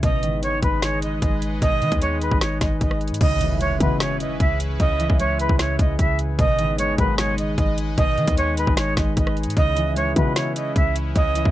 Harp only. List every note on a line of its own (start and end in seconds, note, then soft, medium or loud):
0.03 0.28 B2 loud
0.23 1.67 D#3 medium
0.42 1.87 G#3 medium
1.62 1.87 B2 loud
1.82 3.26 D#3 medium
2.02 3.26 G#3 medium
3.21 4.78 C#3 loud
3.41 4.85 E3 medium
3.60 5.18 G#3 medium
4.79 6.44 C#3 loud
5.00 6.44 E3 medium
5.19 6.44 G#3 medium
6.39 6.64 B2 loud
6.59 8.03 D#3 medium
6.78 8.23 G#3 medium
7.98 8.23 B2 loud
8.18 9.62 D#3 medium
8.37 9.62 G#3 medium
9.57 11.14 C#3 loud
9.76 11.21 E3 medium
9.96 11.51 G#3 medium
11.15 11.51 C#3 loud
11.36 11.51 E3 medium